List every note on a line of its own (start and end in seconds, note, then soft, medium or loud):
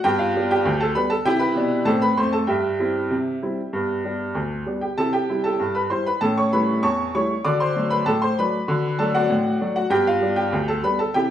0.04 0.29 G2 medium
0.04 0.22 B3 medium
0.04 0.18 G4 medium
0.04 0.18 G5 loud
0.19 0.48 F4 medium
0.19 0.49 F5 medium
0.36 0.52 G3 medium
0.36 0.52 B3 soft
0.36 0.52 D4 soft
0.51 0.79 G4 medium
0.51 0.80 G5 medium
0.65 0.91 D2 medium
0.80 0.95 A4 medium
0.80 0.95 A5 medium
0.95 1.12 G3 soft
0.95 1.13 B3 medium
0.95 1.13 D4 soft
0.95 1.10 B4 medium
0.95 1.10 B5 medium
1.10 1.25 A4 medium
1.10 1.25 A5 medium
1.25 1.50 C3 medium
1.25 1.51 E4 medium
1.25 1.40 G4 medium
1.25 1.41 G5 loud
1.39 1.83 B4 medium
1.39 1.86 B5 medium
1.56 1.80 B2 medium
1.56 1.81 D4 medium
1.85 2.11 A2 medium
1.85 2.12 C4 medium
1.85 2.01 A4 medium
1.85 2.02 A5 loud
2.02 2.17 B4 medium
2.02 2.17 B5 medium
2.17 2.42 F2 medium
2.17 2.43 A3 medium
2.17 2.32 C5 medium
2.17 2.33 C6 medium
2.33 2.48 A4 medium
2.33 2.48 A5 medium
2.47 2.75 G2 medium
2.47 4.31 G4 soft
2.47 4.32 E5 medium
2.47 4.35 G5 medium
2.80 2.97 G3 soft
2.80 2.97 C4 soft
2.80 2.97 E4 soft
3.10 3.37 C3 medium
3.43 3.60 G3 soft
3.43 3.60 C4 soft
3.43 3.60 E4 soft
3.73 4.00 G2 medium
3.73 3.92 B3 soft
4.04 4.22 G3 soft
4.04 4.22 B3 soft
4.04 4.22 D4 soft
4.35 4.62 D2 medium
4.66 4.83 G3 soft
4.66 4.84 B3 soft
4.66 4.84 D4 soft
4.81 4.97 G4 soft
4.81 4.97 G5 medium
4.98 5.24 C3 medium
4.98 5.16 E4 soft
4.98 5.12 A4 medium
4.98 5.13 A5 medium
5.13 5.43 G4 medium
5.13 5.44 G5 medium
5.29 5.46 G3 soft
5.29 5.47 E4 soft
5.44 5.74 A4 medium
5.44 5.75 A5 medium
5.59 5.86 G2 medium
5.75 5.90 B4 medium
5.75 5.91 B5 medium
5.90 6.07 G3 soft
5.90 6.08 E4 soft
5.90 6.05 C5 medium
5.90 6.06 C6 medium
6.06 6.21 B4 medium
6.06 6.22 B5 medium
6.21 6.48 A2 medium
6.21 6.40 C#4 soft
6.21 6.37 A4 medium
6.21 6.37 A5 medium
6.38 6.53 C#5 medium
6.38 6.53 C#6 medium
6.53 6.70 G3 soft
6.53 6.70 A3 soft
6.53 6.70 E4 soft
6.53 6.82 B4 medium
6.53 6.84 B5 medium
6.83 7.09 E2 medium
6.83 7.12 C#5 medium
6.83 7.12 A5 medium
6.83 7.13 C#6 medium
7.15 7.32 G3 soft
7.15 7.32 A3 soft
7.15 7.32 E4 soft
7.15 7.44 C#5 medium
7.15 7.45 C#6 medium
7.45 7.71 D3 medium
7.45 7.63 F#4 medium
7.45 7.60 D5 medium
7.45 7.60 D6 loud
7.60 7.90 C5 medium
7.60 7.91 C6 medium
7.76 7.93 F#3 soft
7.76 7.93 A3 soft
7.76 7.93 D4 soft
7.90 8.06 B4 medium
7.90 8.06 B5 medium
8.06 8.32 A2 medium
8.06 8.21 A4 medium
8.06 8.22 A5 loud
8.22 8.37 C5 medium
8.22 8.37 C6 loud
8.38 8.55 F#3 soft
8.38 8.56 A3 soft
8.38 8.56 D4 soft
8.38 8.96 B4 medium
8.38 9.00 B5 medium
8.68 8.94 D3 medium
8.68 8.87 F#4 medium
8.99 9.16 F#3 soft
8.99 9.16 A3 soft
8.99 9.16 D4 medium
8.99 9.14 A4 medium
8.99 9.14 A5 medium
9.15 9.72 F#4 medium
9.15 9.73 D5 medium
9.15 9.74 F#5 medium
9.30 9.56 A2 medium
9.61 9.78 F#3 soft
9.61 9.78 A3 soft
9.61 9.78 D4 medium
9.76 9.91 F#4 medium
9.76 9.91 F#5 medium
9.90 10.17 G2 medium
9.90 10.09 B3 medium
9.90 10.06 G4 medium
9.90 10.06 G5 loud
10.07 10.36 F4 medium
10.07 10.38 F5 medium
10.21 10.39 G3 soft
10.21 10.39 B3 soft
10.21 10.39 D4 medium
10.36 10.66 G4 medium
10.36 10.68 G5 medium
10.52 10.79 D2 medium
10.68 10.83 A4 medium
10.68 10.84 A5 medium
10.83 11.01 G3 medium
10.83 11.01 B3 soft
10.83 11.01 D4 soft
10.83 10.99 B4 medium
10.83 10.99 B5 medium
10.99 11.14 A4 medium
10.99 11.15 A5 medium
11.14 11.30 C3 medium
11.14 11.30 E4 medium
11.14 11.30 G4 medium
11.14 11.30 G5 loud